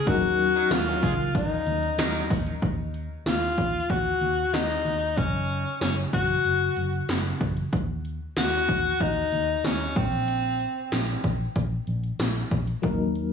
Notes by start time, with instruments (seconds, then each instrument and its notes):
0.06 fingered electric bass D#2, fm electric piano F#3 C#4 D#4 A#4, alto saxophone F#4, kick, closed hi-hat
0.39 closed hi-hat
0.55 horn section F#3 D#4 A#4
0.71 fingered electric bass D#2, alto saxophone F4, snare, closed hi-hat
0.87 horn section D#3 C#4 F#4
1.03 fingered electric bass C#2, horn section G#3 F4 G#4, kick, closed hi-hat
1.35 fingered electric bass D#2, alto saxophone D#4, kick, closed hi-hat
1.67 fingered electric bass D#2, closed hi-hat
1.83 closed hi-hat
1.98 fingered electric bass D#2, horn section F#3 D#4 A#4, snare, closed hi-hat
2.30 fingered electric bass D#2, kick, open hi-hat
2.46 closed hi-hat
2.62 fingered electric bass D#2, kick, closed hi-hat
2.94 closed hi-hat
3.26 fingered electric bass D#2, alto saxophone F4, snare, closed hi-hat
3.58 fingered electric bass D#2, kick, closed hi-hat
3.90 fingered electric bass D#2, alto saxophone F#4, kick, closed hi-hat
4.21 fingered electric bass D#2, closed hi-hat
4.38 closed hi-hat
4.54 fingered electric bass D#2, alto saxophone D#4, snare, closed hi-hat
4.85 fingered electric bass D#2, closed hi-hat
5.02 closed hi-hat
5.17 fingered electric bass F#1, alto saxophone C#4, kick, closed hi-hat
5.50 closed hi-hat
5.81 fingered electric bass F#1, alto saxophone C#4, snare, closed hi-hat
6.13 fingered electric bass F#1, alto saxophone F#4, kick, closed hi-hat
6.45 fingered electric bass F#1, closed hi-hat
6.77 fingered electric bass F#1, closed hi-hat
6.93 closed hi-hat
7.09 fingered electric bass F#1, snare, closed hi-hat
7.41 fingered electric bass F#1, kick, closed hi-hat
7.57 closed hi-hat
7.73 fingered electric bass D#2, kick, closed hi-hat
8.05 closed hi-hat
8.37 fingered electric bass D#2, alto saxophone F#4, snare, closed hi-hat
8.68 fingered electric bass D#2, kick, closed hi-hat
9.00 fingered electric bass D#2, alto saxophone D#4, kick, closed hi-hat
9.32 fingered electric bass D#2, closed hi-hat
9.48 closed hi-hat
9.64 fingered electric bass D#2, alto saxophone C#4, snare, closed hi-hat
9.96 fingered electric bass A#1, alto saxophone C4, kick, closed hi-hat
10.12 closed hi-hat
10.28 closed hi-hat
10.60 closed hi-hat
10.92 fingered electric bass A#1, snare, closed hi-hat
11.24 fingered electric bass A#1, kick, closed hi-hat
11.56 fingered electric bass A#1, kick, closed hi-hat
11.87 fingered electric bass A#1, closed hi-hat
12.04 closed hi-hat
12.19 fingered electric bass A#1, snare, closed hi-hat
12.51 fingered electric bass A#1, kick, closed hi-hat
12.67 closed hi-hat
12.82 fingered electric bass D#2, fm electric piano F#3 A#3 D#4 A#4, kick, closed hi-hat
13.15 closed hi-hat